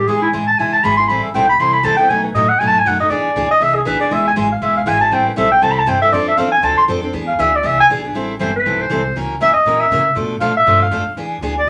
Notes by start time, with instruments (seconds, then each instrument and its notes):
0.07 upright bass E2, steel-string acoustic guitar E3 G#3 B3 E4 G#4, clarinet G#4
0.22 clarinet E4
0.33 upright bass A1, steel-string acoustic guitar E3 G#3 B3 E4 G#4
0.47 clarinet A5
0.58 upright bass B1, steel-string acoustic guitar E3 G#3 B3 E4 G#4, clarinet G#5
0.73 clarinet A5, muted upright bass stroke
0.84 upright bass G#1, steel-string acoustic guitar E3 G#3 B3 E4 G#4, clarinet B5
0.97 steel-string acoustic guitar B3 E4 G#4, clarinet C6
1.08 upright bass A1, steel-string acoustic guitar E3 G3 C4 E4 A4, clarinet B5
1.23 clarinet E5
1.34 upright bass B1, steel-string acoustic guitar E3 G3 C4 E4 A4, clarinet G5
1.49 clarinet B5
1.59 upright bass C2, steel-string acoustic guitar E3 G3 C4 E4 A4, clarinet C6
1.73 clarinet B5
1.83 upright bass E2, steel-string acoustic guitar E3 G3 C4 E4 A4, clarinet A5
1.97 steel-string acoustic guitar C4 E4 A4, clarinet G5
2.09 upright bass B2, steel-string acoustic guitar B2 F#3 A3 D#4 F#4, clarinet G#5
2.23 clarinet B4
2.34 upright bass A2, steel-string acoustic guitar B2 F#3 A3 D#4 F#4, clarinet D#5
2.49 clarinet F#5
2.59 upright bass G#2, steel-string acoustic guitar B2 F#3 A3 D#4 F#4, clarinet G#5
2.68 clarinet A5
2.78 clarinet G#5
2.85 upright bass F#2, steel-string acoustic guitar B2 F#3 A3 D#4 F#4, clarinet F#5
2.99 steel-string acoustic guitar A3 D#4 F#4, clarinet D#5
3.10 upright bass E2, steel-string acoustic guitar E3 B3 D4 G#4, clarinet D5
3.36 upright bass D2, steel-string acoustic guitar E3 B3 D4 G#4
3.50 clarinet D#5, muted upright bass stroke
3.60 upright bass C2, steel-string acoustic guitar E3 B3 D4 G#4, clarinet E5
3.75 clarinet G#4
3.85 upright bass B1, steel-string acoustic guitar E3 B3 D4 G#4, clarinet B4
3.99 steel-string acoustic guitar B3 D4 G#4, clarinet D5, muted upright bass stroke
4.10 upright bass E1, steel-string acoustic guitar E3 G#3 B3 E4 G#4, clarinet E5
4.28 clarinet G#5
4.36 upright bass G#1, steel-string acoustic guitar E3 G#3 B3 E4 G#4
4.52 clarinet F5
4.62 upright bass E1, steel-string acoustic guitar E3 G#3 B3 E4 G#4, clarinet E5
4.77 clarinet F5
4.86 upright bass G#1, steel-string acoustic guitar E3 G#3 B3 E4 G#4, clarinet G#5
5.00 steel-string acoustic guitar B3 E4 G#4, clarinet A5
5.11 upright bass A1, steel-string acoustic guitar E3 G3 C4 E4 A4, clarinet G5
5.28 clarinet B4
5.36 upright bass B1, steel-string acoustic guitar E3 G3 C4 E4 A4, clarinet E5
5.52 clarinet G5
5.61 upright bass C2, steel-string acoustic guitar E3 G3 C4 E4 A4, clarinet A5
5.72 clarinet B5
5.79 clarinet A5
5.86 upright bass G2, steel-string acoustic guitar E3 G3 C4 E4 A4, clarinet G5
6.02 steel-string acoustic guitar C4 E4 A4, clarinet E5
6.12 upright bass F2, steel-string acoustic guitar F3 C4 D4 A4, clarinet D5
6.28 clarinet E5
6.37 upright bass E2, steel-string acoustic guitar F3 C4 D4 A4, clarinet F5
6.52 clarinet G#5
6.62 upright bass D2, steel-string acoustic guitar F3 C4 D4 A4, clarinet A5
6.78 clarinet C6, muted upright bass stroke
6.88 upright bass F2, steel-string acoustic guitar F3 C4 D4 A4
7.01 steel-string acoustic guitar C4 D4 A4
7.13 upright bass E2, steel-string acoustic guitar E3 B3 D4 G#4
7.28 clarinet F5
7.39 upright bass D2, steel-string acoustic guitar E3 B3 D4 G#4, clarinet E5
7.56 clarinet D5
7.63 upright bass C2, steel-string acoustic guitar E3 B3 D4 G#4, clarinet E5
7.80 clarinet G#5
7.90 upright bass B1, steel-string acoustic guitar E3 B3 D4 G#4
8.03 steel-string acoustic guitar B3 D4 G#4
8.14 upright bass A1, steel-string acoustic guitar E3 G3 C4 E4 A4
8.39 upright bass G1, steel-string acoustic guitar E3 G3 C4 E4 A4, clarinet C5
8.56 clarinet B4
8.66 upright bass B1, steel-string acoustic guitar E3 G3 C4 E4 A4
8.81 clarinet C5
8.90 upright bass C2, steel-string acoustic guitar E3 G3 C4 E4 A4
9.16 upright bass C#2, steel-string acoustic guitar E3 A#3 C#4 F#4 A#4
9.40 upright bass F#2, steel-string acoustic guitar E3 A#3 C#4 F#4 A#4, clarinet E5
9.54 clarinet D#5, muted upright bass stroke
9.65 upright bass A#2, steel-string acoustic guitar E3 A#3 C#4 F#4 A#4
9.80 clarinet E5
9.91 upright bass C#3, steel-string acoustic guitar E3 A#3 C#4 F#4 A#4
10.15 steel-string acoustic guitar B2 F3 A3 D4 A4, upright bass B2
10.40 upright bass A2, steel-string acoustic guitar B2 F3 A3 D4 A4, clarinet F5
10.57 clarinet E5
10.66 upright bass G2, steel-string acoustic guitar B2 F3 A3 D4 A4
10.82 clarinet F5
10.91 upright bass F2, steel-string acoustic guitar B2 F3 A3 D4 A4
11.17 upright bass E2, steel-string acoustic guitar E3 B3 D4 G#4
11.41 upright bass D2, steel-string acoustic guitar E3 B3 D4 G#4
11.59 clarinet D5